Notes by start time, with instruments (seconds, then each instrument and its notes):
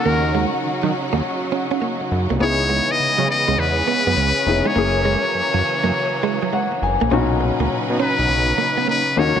Already playing: string section C#3 F#3 C#4 D#4 F#4, grand piano A#3 C#4 D#4 F#4, muted trumpet A#4
0.06 analog synth bass D#2, clean electric guitar A#3
0.35 clean electric guitar G#3
0.54 muted clean electric guitar stroke
0.65 analog synth bass D#3
0.83 analog synth bass D#3, clean electric guitar F#3
0.94 muted clean electric guitar stroke
1.13 analog synth bass D#2, clean electric guitar A#3
1.23 muted clean electric guitar stroke
1.52 clean electric guitar C#4
1.71 clean electric guitar C#4
1.82 clean electric guitar A#3
2.01 muted clean electric guitar stroke
2.12 analog synth bass F#2
2.30 analog synth bass C2, clean electric guitar A#3
2.40 analog synth bass C#2, string section E3 G#3 B3 C#4, grand piano B3 D#4 E4 G#4, clean electric guitar B3, muted trumpet C#5
2.70 clean electric guitar G#3
2.89 muted trumpet D#5, muted clean electric guitar stroke
3.00 analog synth bass C#3
3.18 analog synth bass C#3, clean electric guitar F#3
3.29 muted trumpet D#5, muted clean electric guitar stroke
3.48 analog synth bass C#2, clean electric guitar G#3
3.58 analog synth bass E2, muted trumpet B4, muted clean electric guitar stroke
3.88 clean electric guitar B3
4.07 analog synth bass F#2, clean electric guitar B3
4.17 analog synth bass C#2, clean electric guitar G#3
4.36 muted clean electric guitar stroke
4.47 analog synth bass F1, grand piano B3 D#4 E4 G#4
4.65 clean electric guitar G#3, muted trumpet C#5
4.75 analog synth bass F#1, string section E3 F#3 A#3, grand piano A#3 C#4 E4 G#4, clean electric guitar A#3
5.05 clean electric guitar G#3
5.24 muted clean electric guitar stroke
5.35 analog synth bass F#2
5.54 analog synth bass F#2, clean electric guitar F#3
5.64 muted clean electric guitar stroke
5.84 analog synth bass F#2, clean electric guitar A#3
5.94 muted clean electric guitar stroke
6.23 clean electric guitar G#3
6.42 clean electric guitar F#3
6.53 clean electric guitar G#3, grand piano F#5
6.72 muted clean electric guitar stroke
6.82 analog synth bass F#1, grand piano G#5
7.01 analog synth bass A#1, clean electric guitar A#3
7.11 analog synth bass B1, grand piano A#2 C#4 D#4 F#4, string section C#3 F#3 C#4 D#4 B4, clean electric guitar B3
7.41 muted clean electric guitar stroke
7.60 analog synth bass C#2, clean electric guitar A#3
7.70 analog synth bass B2
7.90 analog synth bass B2
8.00 clean electric guitar C#4, muted trumpet B4
8.19 analog synth bass B1
8.29 analog synth bass B1, muted clean electric guitar stroke
8.58 clean electric guitar A#3
8.77 clean electric guitar B3
8.88 clean electric guitar A#3, muted trumpet B4
9.16 analog synth bass D#2, string section F#3 A#3 D#4 F#4, grand piano A#3 C#4 D#4 F#4, muted trumpet C#5, muted clean electric guitar stroke
9.36 analog synth bass D2, clean electric guitar F#3